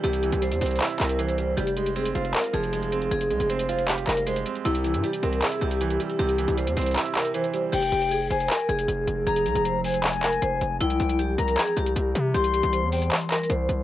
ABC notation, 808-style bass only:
X:1
M:4/4
L:1/16
Q:1/4=156
K:Fm
V:1 name="808-style bass" clef=bass
C,,3 C,,2 =E,, C,,2 z2 C,,6 | F,,,6 F,,,2 z2 F,,,6 | F,,,2 C,, F,,,6- F,,, F,,,4 z2 | C,,3 G,, z2 C,,2 z2 C,,4 z2 |
C,,3 C,,2 =E,, C,,2 z8 | F,,,2 F,,,4 F,,,2 z2 F,,,2 F,,,2 F,,,2 | F,,,2 C,, F,,,8- F,,, F,,,2 F,,,2 | C,,2 C,,4 C,,2 z2 C,,2 C,,2 C,2 |
C,,3 C,,2 =E,,3 z4 C,,2 C,,2 |]